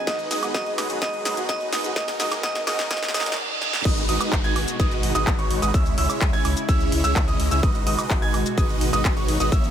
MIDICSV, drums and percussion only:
0, 0, Header, 1, 2, 480
1, 0, Start_track
1, 0, Key_signature, 5, "minor"
1, 0, Tempo, 472441
1, 73, Time_signature, 4, 2, 24, 8
1, 9862, End_track
2, 0, Start_track
2, 0, Title_t, "Drums"
2, 73, Note_on_c, 9, 38, 74
2, 73, Note_on_c, 9, 42, 54
2, 74, Note_on_c, 9, 36, 113
2, 75, Note_on_c, 9, 82, 46
2, 175, Note_off_c, 9, 36, 0
2, 175, Note_off_c, 9, 38, 0
2, 175, Note_off_c, 9, 42, 0
2, 177, Note_off_c, 9, 82, 0
2, 193, Note_on_c, 9, 42, 29
2, 196, Note_on_c, 9, 82, 34
2, 295, Note_off_c, 9, 42, 0
2, 297, Note_off_c, 9, 82, 0
2, 313, Note_on_c, 9, 38, 73
2, 313, Note_on_c, 9, 46, 98
2, 316, Note_on_c, 9, 82, 83
2, 415, Note_off_c, 9, 38, 0
2, 415, Note_off_c, 9, 46, 0
2, 417, Note_off_c, 9, 82, 0
2, 434, Note_on_c, 9, 42, 54
2, 434, Note_on_c, 9, 76, 74
2, 436, Note_on_c, 9, 82, 35
2, 535, Note_off_c, 9, 42, 0
2, 535, Note_off_c, 9, 76, 0
2, 538, Note_off_c, 9, 82, 0
2, 554, Note_on_c, 9, 36, 112
2, 554, Note_on_c, 9, 38, 76
2, 554, Note_on_c, 9, 42, 55
2, 556, Note_on_c, 9, 82, 47
2, 655, Note_off_c, 9, 36, 0
2, 655, Note_off_c, 9, 38, 0
2, 655, Note_off_c, 9, 42, 0
2, 658, Note_off_c, 9, 82, 0
2, 674, Note_on_c, 9, 42, 26
2, 776, Note_off_c, 9, 42, 0
2, 793, Note_on_c, 9, 38, 77
2, 793, Note_on_c, 9, 46, 94
2, 793, Note_on_c, 9, 76, 77
2, 796, Note_on_c, 9, 82, 81
2, 895, Note_off_c, 9, 38, 0
2, 895, Note_off_c, 9, 46, 0
2, 895, Note_off_c, 9, 76, 0
2, 897, Note_off_c, 9, 82, 0
2, 913, Note_on_c, 9, 42, 51
2, 915, Note_on_c, 9, 82, 34
2, 1014, Note_off_c, 9, 42, 0
2, 1017, Note_off_c, 9, 82, 0
2, 1033, Note_on_c, 9, 36, 116
2, 1034, Note_on_c, 9, 38, 85
2, 1034, Note_on_c, 9, 42, 55
2, 1036, Note_on_c, 9, 82, 46
2, 1135, Note_off_c, 9, 36, 0
2, 1135, Note_off_c, 9, 38, 0
2, 1135, Note_off_c, 9, 42, 0
2, 1138, Note_off_c, 9, 82, 0
2, 1154, Note_on_c, 9, 42, 27
2, 1256, Note_off_c, 9, 42, 0
2, 1274, Note_on_c, 9, 38, 85
2, 1274, Note_on_c, 9, 46, 100
2, 1277, Note_on_c, 9, 82, 87
2, 1376, Note_off_c, 9, 38, 0
2, 1376, Note_off_c, 9, 46, 0
2, 1378, Note_off_c, 9, 82, 0
2, 1394, Note_on_c, 9, 42, 56
2, 1396, Note_on_c, 9, 82, 37
2, 1496, Note_off_c, 9, 42, 0
2, 1498, Note_off_c, 9, 82, 0
2, 1513, Note_on_c, 9, 36, 114
2, 1514, Note_on_c, 9, 38, 90
2, 1514, Note_on_c, 9, 42, 53
2, 1516, Note_on_c, 9, 82, 47
2, 1615, Note_off_c, 9, 36, 0
2, 1615, Note_off_c, 9, 38, 0
2, 1615, Note_off_c, 9, 42, 0
2, 1618, Note_off_c, 9, 82, 0
2, 1633, Note_on_c, 9, 42, 26
2, 1735, Note_off_c, 9, 42, 0
2, 1753, Note_on_c, 9, 38, 91
2, 1753, Note_on_c, 9, 46, 100
2, 1756, Note_on_c, 9, 82, 83
2, 1855, Note_off_c, 9, 38, 0
2, 1855, Note_off_c, 9, 46, 0
2, 1857, Note_off_c, 9, 82, 0
2, 1873, Note_on_c, 9, 42, 54
2, 1875, Note_on_c, 9, 82, 35
2, 1974, Note_off_c, 9, 42, 0
2, 1977, Note_off_c, 9, 82, 0
2, 1993, Note_on_c, 9, 36, 119
2, 1993, Note_on_c, 9, 38, 95
2, 1993, Note_on_c, 9, 42, 54
2, 1995, Note_on_c, 9, 82, 47
2, 2094, Note_off_c, 9, 38, 0
2, 2094, Note_off_c, 9, 42, 0
2, 2095, Note_off_c, 9, 36, 0
2, 2097, Note_off_c, 9, 82, 0
2, 2113, Note_on_c, 9, 38, 86
2, 2113, Note_on_c, 9, 46, 61
2, 2116, Note_on_c, 9, 82, 35
2, 2215, Note_off_c, 9, 38, 0
2, 2215, Note_off_c, 9, 46, 0
2, 2217, Note_off_c, 9, 82, 0
2, 2233, Note_on_c, 9, 38, 91
2, 2233, Note_on_c, 9, 46, 99
2, 2235, Note_on_c, 9, 82, 79
2, 2334, Note_off_c, 9, 38, 0
2, 2334, Note_off_c, 9, 46, 0
2, 2337, Note_off_c, 9, 82, 0
2, 2353, Note_on_c, 9, 38, 80
2, 2353, Note_on_c, 9, 42, 55
2, 2353, Note_on_c, 9, 76, 73
2, 2355, Note_on_c, 9, 82, 35
2, 2455, Note_off_c, 9, 38, 0
2, 2455, Note_off_c, 9, 42, 0
2, 2455, Note_off_c, 9, 76, 0
2, 2457, Note_off_c, 9, 82, 0
2, 2473, Note_on_c, 9, 36, 115
2, 2473, Note_on_c, 9, 38, 99
2, 2473, Note_on_c, 9, 42, 55
2, 2476, Note_on_c, 9, 82, 45
2, 2575, Note_off_c, 9, 36, 0
2, 2575, Note_off_c, 9, 38, 0
2, 2575, Note_off_c, 9, 42, 0
2, 2577, Note_off_c, 9, 82, 0
2, 2593, Note_on_c, 9, 38, 88
2, 2593, Note_on_c, 9, 42, 29
2, 2695, Note_off_c, 9, 38, 0
2, 2695, Note_off_c, 9, 42, 0
2, 2713, Note_on_c, 9, 38, 99
2, 2713, Note_on_c, 9, 46, 100
2, 2713, Note_on_c, 9, 76, 78
2, 2716, Note_on_c, 9, 82, 82
2, 2815, Note_off_c, 9, 38, 0
2, 2815, Note_off_c, 9, 46, 0
2, 2815, Note_off_c, 9, 76, 0
2, 2817, Note_off_c, 9, 82, 0
2, 2834, Note_on_c, 9, 38, 85
2, 2834, Note_on_c, 9, 42, 53
2, 2836, Note_on_c, 9, 82, 35
2, 2936, Note_off_c, 9, 38, 0
2, 2936, Note_off_c, 9, 42, 0
2, 2938, Note_off_c, 9, 82, 0
2, 2953, Note_on_c, 9, 36, 117
2, 2953, Note_on_c, 9, 38, 107
2, 2953, Note_on_c, 9, 42, 57
2, 2956, Note_on_c, 9, 82, 48
2, 3014, Note_off_c, 9, 38, 0
2, 3014, Note_on_c, 9, 38, 94
2, 3055, Note_off_c, 9, 36, 0
2, 3055, Note_off_c, 9, 42, 0
2, 3057, Note_off_c, 9, 82, 0
2, 3074, Note_off_c, 9, 38, 0
2, 3074, Note_on_c, 9, 38, 88
2, 3074, Note_on_c, 9, 42, 27
2, 3076, Note_on_c, 9, 82, 33
2, 3134, Note_off_c, 9, 38, 0
2, 3134, Note_on_c, 9, 38, 92
2, 3176, Note_off_c, 9, 42, 0
2, 3178, Note_off_c, 9, 82, 0
2, 3195, Note_off_c, 9, 38, 0
2, 3195, Note_on_c, 9, 38, 104
2, 3195, Note_on_c, 9, 46, 106
2, 3197, Note_on_c, 9, 82, 81
2, 3253, Note_off_c, 9, 38, 0
2, 3253, Note_on_c, 9, 38, 94
2, 3296, Note_off_c, 9, 46, 0
2, 3299, Note_off_c, 9, 82, 0
2, 3313, Note_off_c, 9, 38, 0
2, 3313, Note_on_c, 9, 38, 91
2, 3313, Note_on_c, 9, 42, 59
2, 3316, Note_on_c, 9, 82, 37
2, 3373, Note_off_c, 9, 38, 0
2, 3373, Note_on_c, 9, 38, 97
2, 3415, Note_off_c, 9, 42, 0
2, 3417, Note_off_c, 9, 82, 0
2, 3474, Note_off_c, 9, 38, 0
2, 3673, Note_on_c, 9, 38, 64
2, 3774, Note_off_c, 9, 38, 0
2, 3794, Note_on_c, 9, 38, 76
2, 3895, Note_off_c, 9, 38, 0
2, 3913, Note_on_c, 9, 36, 118
2, 3913, Note_on_c, 9, 42, 55
2, 3913, Note_on_c, 9, 49, 105
2, 3916, Note_on_c, 9, 82, 56
2, 4015, Note_off_c, 9, 36, 0
2, 4015, Note_off_c, 9, 42, 0
2, 4015, Note_off_c, 9, 49, 0
2, 4017, Note_off_c, 9, 82, 0
2, 4033, Note_on_c, 9, 42, 28
2, 4036, Note_on_c, 9, 82, 35
2, 4135, Note_off_c, 9, 42, 0
2, 4137, Note_off_c, 9, 82, 0
2, 4153, Note_on_c, 9, 46, 104
2, 4255, Note_off_c, 9, 46, 0
2, 4273, Note_on_c, 9, 42, 54
2, 4273, Note_on_c, 9, 76, 75
2, 4275, Note_on_c, 9, 82, 68
2, 4375, Note_off_c, 9, 42, 0
2, 4375, Note_off_c, 9, 76, 0
2, 4377, Note_off_c, 9, 82, 0
2, 4393, Note_on_c, 9, 36, 122
2, 4393, Note_on_c, 9, 42, 55
2, 4394, Note_on_c, 9, 39, 122
2, 4396, Note_on_c, 9, 82, 54
2, 4495, Note_off_c, 9, 36, 0
2, 4495, Note_off_c, 9, 42, 0
2, 4496, Note_off_c, 9, 39, 0
2, 4497, Note_off_c, 9, 82, 0
2, 4512, Note_on_c, 9, 42, 28
2, 4515, Note_on_c, 9, 82, 33
2, 4614, Note_off_c, 9, 42, 0
2, 4617, Note_off_c, 9, 82, 0
2, 4633, Note_on_c, 9, 46, 90
2, 4633, Note_on_c, 9, 76, 75
2, 4735, Note_off_c, 9, 46, 0
2, 4735, Note_off_c, 9, 76, 0
2, 4753, Note_on_c, 9, 42, 55
2, 4755, Note_on_c, 9, 82, 64
2, 4855, Note_off_c, 9, 42, 0
2, 4857, Note_off_c, 9, 82, 0
2, 4873, Note_on_c, 9, 36, 116
2, 4873, Note_on_c, 9, 42, 56
2, 4876, Note_on_c, 9, 82, 57
2, 4975, Note_off_c, 9, 36, 0
2, 4975, Note_off_c, 9, 42, 0
2, 4977, Note_off_c, 9, 82, 0
2, 4993, Note_on_c, 9, 42, 28
2, 4996, Note_on_c, 9, 82, 32
2, 5095, Note_off_c, 9, 42, 0
2, 5097, Note_off_c, 9, 82, 0
2, 5113, Note_on_c, 9, 46, 106
2, 5215, Note_off_c, 9, 46, 0
2, 5233, Note_on_c, 9, 42, 58
2, 5235, Note_on_c, 9, 82, 72
2, 5335, Note_off_c, 9, 42, 0
2, 5337, Note_off_c, 9, 82, 0
2, 5353, Note_on_c, 9, 42, 54
2, 5354, Note_on_c, 9, 36, 121
2, 5354, Note_on_c, 9, 39, 125
2, 5356, Note_on_c, 9, 82, 56
2, 5455, Note_off_c, 9, 36, 0
2, 5455, Note_off_c, 9, 39, 0
2, 5455, Note_off_c, 9, 42, 0
2, 5457, Note_off_c, 9, 82, 0
2, 5474, Note_on_c, 9, 42, 27
2, 5476, Note_on_c, 9, 82, 32
2, 5575, Note_off_c, 9, 42, 0
2, 5578, Note_off_c, 9, 82, 0
2, 5594, Note_on_c, 9, 46, 96
2, 5695, Note_off_c, 9, 46, 0
2, 5713, Note_on_c, 9, 42, 57
2, 5716, Note_on_c, 9, 82, 68
2, 5815, Note_off_c, 9, 42, 0
2, 5817, Note_off_c, 9, 82, 0
2, 5833, Note_on_c, 9, 36, 125
2, 5834, Note_on_c, 9, 42, 52
2, 5836, Note_on_c, 9, 82, 54
2, 5935, Note_off_c, 9, 36, 0
2, 5935, Note_off_c, 9, 42, 0
2, 5938, Note_off_c, 9, 82, 0
2, 5954, Note_on_c, 9, 42, 27
2, 5956, Note_on_c, 9, 82, 35
2, 6055, Note_off_c, 9, 42, 0
2, 6058, Note_off_c, 9, 82, 0
2, 6073, Note_on_c, 9, 46, 107
2, 6175, Note_off_c, 9, 46, 0
2, 6194, Note_on_c, 9, 42, 55
2, 6194, Note_on_c, 9, 76, 74
2, 6196, Note_on_c, 9, 82, 63
2, 6295, Note_off_c, 9, 42, 0
2, 6295, Note_off_c, 9, 76, 0
2, 6298, Note_off_c, 9, 82, 0
2, 6313, Note_on_c, 9, 36, 127
2, 6313, Note_on_c, 9, 39, 125
2, 6313, Note_on_c, 9, 42, 56
2, 6315, Note_on_c, 9, 82, 54
2, 6414, Note_off_c, 9, 42, 0
2, 6415, Note_off_c, 9, 36, 0
2, 6415, Note_off_c, 9, 39, 0
2, 6417, Note_off_c, 9, 82, 0
2, 6433, Note_on_c, 9, 42, 27
2, 6435, Note_on_c, 9, 82, 33
2, 6534, Note_off_c, 9, 42, 0
2, 6537, Note_off_c, 9, 82, 0
2, 6553, Note_on_c, 9, 46, 98
2, 6553, Note_on_c, 9, 76, 76
2, 6654, Note_off_c, 9, 46, 0
2, 6654, Note_off_c, 9, 76, 0
2, 6673, Note_on_c, 9, 42, 54
2, 6675, Note_on_c, 9, 82, 64
2, 6774, Note_off_c, 9, 42, 0
2, 6777, Note_off_c, 9, 82, 0
2, 6793, Note_on_c, 9, 36, 121
2, 6793, Note_on_c, 9, 42, 54
2, 6796, Note_on_c, 9, 82, 53
2, 6895, Note_off_c, 9, 36, 0
2, 6895, Note_off_c, 9, 42, 0
2, 6897, Note_off_c, 9, 82, 0
2, 6913, Note_on_c, 9, 42, 27
2, 6916, Note_on_c, 9, 82, 31
2, 7015, Note_off_c, 9, 42, 0
2, 7017, Note_off_c, 9, 82, 0
2, 7034, Note_on_c, 9, 46, 111
2, 7135, Note_off_c, 9, 46, 0
2, 7153, Note_on_c, 9, 42, 55
2, 7156, Note_on_c, 9, 82, 67
2, 7255, Note_off_c, 9, 42, 0
2, 7257, Note_off_c, 9, 82, 0
2, 7273, Note_on_c, 9, 36, 122
2, 7274, Note_on_c, 9, 42, 54
2, 7275, Note_on_c, 9, 39, 124
2, 7276, Note_on_c, 9, 82, 54
2, 7375, Note_off_c, 9, 36, 0
2, 7376, Note_off_c, 9, 39, 0
2, 7376, Note_off_c, 9, 42, 0
2, 7378, Note_off_c, 9, 82, 0
2, 7395, Note_on_c, 9, 42, 28
2, 7397, Note_on_c, 9, 82, 33
2, 7496, Note_off_c, 9, 42, 0
2, 7499, Note_off_c, 9, 82, 0
2, 7515, Note_on_c, 9, 46, 98
2, 7616, Note_off_c, 9, 46, 0
2, 7634, Note_on_c, 9, 42, 54
2, 7636, Note_on_c, 9, 82, 62
2, 7735, Note_off_c, 9, 42, 0
2, 7738, Note_off_c, 9, 82, 0
2, 7753, Note_on_c, 9, 36, 127
2, 7754, Note_on_c, 9, 42, 51
2, 7756, Note_on_c, 9, 82, 54
2, 7855, Note_off_c, 9, 36, 0
2, 7855, Note_off_c, 9, 42, 0
2, 7858, Note_off_c, 9, 82, 0
2, 7873, Note_on_c, 9, 42, 27
2, 7876, Note_on_c, 9, 82, 33
2, 7975, Note_off_c, 9, 42, 0
2, 7977, Note_off_c, 9, 82, 0
2, 7993, Note_on_c, 9, 46, 110
2, 8095, Note_off_c, 9, 46, 0
2, 8113, Note_on_c, 9, 42, 50
2, 8113, Note_on_c, 9, 76, 82
2, 8116, Note_on_c, 9, 82, 62
2, 8215, Note_off_c, 9, 42, 0
2, 8215, Note_off_c, 9, 76, 0
2, 8218, Note_off_c, 9, 82, 0
2, 8233, Note_on_c, 9, 36, 125
2, 8233, Note_on_c, 9, 42, 51
2, 8234, Note_on_c, 9, 39, 121
2, 8236, Note_on_c, 9, 82, 54
2, 8335, Note_off_c, 9, 36, 0
2, 8335, Note_off_c, 9, 42, 0
2, 8336, Note_off_c, 9, 39, 0
2, 8337, Note_off_c, 9, 82, 0
2, 8354, Note_on_c, 9, 42, 26
2, 8356, Note_on_c, 9, 82, 33
2, 8455, Note_off_c, 9, 42, 0
2, 8458, Note_off_c, 9, 82, 0
2, 8473, Note_on_c, 9, 46, 93
2, 8473, Note_on_c, 9, 76, 79
2, 8575, Note_off_c, 9, 46, 0
2, 8575, Note_off_c, 9, 76, 0
2, 8594, Note_on_c, 9, 42, 50
2, 8597, Note_on_c, 9, 82, 62
2, 8696, Note_off_c, 9, 42, 0
2, 8698, Note_off_c, 9, 82, 0
2, 8713, Note_on_c, 9, 36, 127
2, 8714, Note_on_c, 9, 42, 51
2, 8716, Note_on_c, 9, 82, 55
2, 8815, Note_off_c, 9, 36, 0
2, 8816, Note_off_c, 9, 42, 0
2, 8818, Note_off_c, 9, 82, 0
2, 8834, Note_on_c, 9, 42, 26
2, 8836, Note_on_c, 9, 82, 32
2, 8935, Note_off_c, 9, 42, 0
2, 8938, Note_off_c, 9, 82, 0
2, 8953, Note_on_c, 9, 46, 108
2, 9055, Note_off_c, 9, 46, 0
2, 9075, Note_on_c, 9, 42, 53
2, 9077, Note_on_c, 9, 82, 68
2, 9176, Note_off_c, 9, 42, 0
2, 9179, Note_off_c, 9, 82, 0
2, 9193, Note_on_c, 9, 36, 121
2, 9194, Note_on_c, 9, 42, 51
2, 9195, Note_on_c, 9, 39, 125
2, 9197, Note_on_c, 9, 82, 54
2, 9295, Note_off_c, 9, 36, 0
2, 9296, Note_off_c, 9, 42, 0
2, 9297, Note_off_c, 9, 39, 0
2, 9299, Note_off_c, 9, 82, 0
2, 9314, Note_on_c, 9, 42, 25
2, 9316, Note_on_c, 9, 82, 30
2, 9415, Note_off_c, 9, 42, 0
2, 9418, Note_off_c, 9, 82, 0
2, 9433, Note_on_c, 9, 46, 98
2, 9535, Note_off_c, 9, 46, 0
2, 9553, Note_on_c, 9, 42, 53
2, 9555, Note_on_c, 9, 82, 66
2, 9654, Note_off_c, 9, 42, 0
2, 9657, Note_off_c, 9, 82, 0
2, 9673, Note_on_c, 9, 36, 127
2, 9673, Note_on_c, 9, 42, 52
2, 9675, Note_on_c, 9, 82, 56
2, 9774, Note_off_c, 9, 42, 0
2, 9775, Note_off_c, 9, 36, 0
2, 9777, Note_off_c, 9, 82, 0
2, 9793, Note_on_c, 9, 42, 27
2, 9796, Note_on_c, 9, 82, 33
2, 9862, Note_off_c, 9, 42, 0
2, 9862, Note_off_c, 9, 82, 0
2, 9862, End_track
0, 0, End_of_file